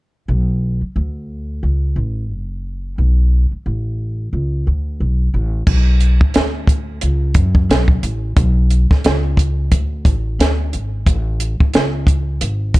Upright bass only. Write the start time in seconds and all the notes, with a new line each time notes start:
0.28 B1
0.81 muted upright bass stroke
0.96 D2
1.63 C#2
1.96 A1
2.31 F#1
2.98 B1
3.51 muted upright bass stroke
3.66 A1
4.33 C#2
4.67 D2
5.00 B1
5.34 A1
5.67 B1
6.21 muted upright bass stroke
6.35 D2
7.03 C#2
7.35 F#2
7.69 B1
8.03 A1
8.37 B1
8.91 muted upright bass stroke
9.05 C#2
9.72 D2
10.05 A1
10.39 D2
10.74 G#1
11.07 A1
11.61 muted upright bass stroke
11.74 C#2
12.41 G#1
12.75 A1